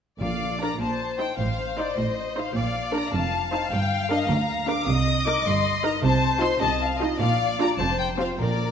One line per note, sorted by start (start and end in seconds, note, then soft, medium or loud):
0.21 0.68 A#1 soft
0.21 0.76 A#2 soft
0.21 0.68 A#2 soft
0.21 0.77 D5 soft
0.21 0.58 F5 medium
0.61 0.76 D4 soft
0.61 0.76 A#4 soft
0.61 0.80 A#5 soft
0.80 1.27 A#1 soft
0.80 1.27 A#2 soft
0.80 1.38 C5 soft
0.80 1.19 A5 medium
1.19 1.34 D#4 soft
1.19 1.34 C5 soft
1.19 1.39 G5 medium
1.39 1.85 A1 soft
1.39 1.85 A2 medium
1.39 2.53 C5 soft
1.39 1.77 F5 medium
1.78 1.93 D#4 soft
1.78 1.93 C5 soft
1.78 1.97 D5 medium
1.97 2.44 A1 soft
1.97 2.43 A2 soft
1.97 2.36 D#5 soft
2.37 2.51 D#4 soft
2.37 2.51 C5 soft
2.37 2.55 F5 soft
2.55 3.02 A#1 soft
2.55 3.02 A#2 medium
2.55 3.14 D5 medium
2.55 2.94 F5 medium
2.94 3.09 D4 soft
2.94 3.09 A#4 soft
2.94 3.14 A#5 medium
3.13 3.60 F1 medium
3.13 3.60 F2 soft
3.13 4.87 F5 medium
3.13 3.51 A5 medium
3.52 3.67 D#4 soft
3.52 3.67 C5 soft
3.52 3.71 A5 medium
3.72 4.18 G1 medium
3.72 4.17 G2 medium
3.72 4.10 G5 medium
4.10 4.25 D4 soft
4.10 4.25 A#4 soft
4.10 4.29 D#5 medium
4.29 4.75 D2 medium
4.29 4.76 D2 medium
4.29 4.69 A#5 medium
4.67 4.82 D4 soft
4.67 4.83 A#4 medium
4.67 4.87 D6 medium
4.87 5.34 C2 medium
4.87 5.34 C3 medium
4.87 6.04 D#5 medium
4.87 5.27 D#6 medium
5.26 5.41 D#4 soft
5.26 5.41 A#4 soft
5.26 5.46 D6 medium
5.46 5.92 G1 medium
5.46 5.92 G2 medium
5.46 5.85 C6 medium
5.84 5.99 D#4 soft
5.84 5.99 A#4 medium
5.84 5.93 A#5 medium
6.04 6.50 C2 medium
6.04 6.50 C3 medium
6.04 6.61 C5 medium
6.04 6.42 A5 medium
6.41 6.57 D#4 medium
6.41 6.57 F4 medium
6.41 6.62 C6 medium
6.61 7.09 C2 medium
6.61 7.08 C3 medium
6.61 6.82 D#5 medium
6.61 6.81 A5 medium
6.82 7.01 F5 medium
7.01 7.16 D#4 medium
7.01 7.16 F4 soft
7.01 7.21 D#5 medium
7.20 7.67 A#1 medium
7.20 7.67 A#2 medium
7.20 7.79 D5 medium
7.20 7.57 F5 medium
7.60 7.75 D4 soft
7.60 7.75 F4 medium
7.60 7.68 A#5 medium
7.79 8.27 F1 medium
7.79 8.27 F2 medium
7.79 8.41 C5 medium
7.79 7.99 A5 medium
8.00 8.08 G5 medium
8.20 8.35 C4 soft
8.20 8.35 F4 soft
8.20 8.28 F5 medium
8.40 8.71 A#1 medium
8.40 8.71 A#2 soft
8.40 8.71 A#2 medium
8.40 8.71 A#4 soft
8.40 8.71 D5 medium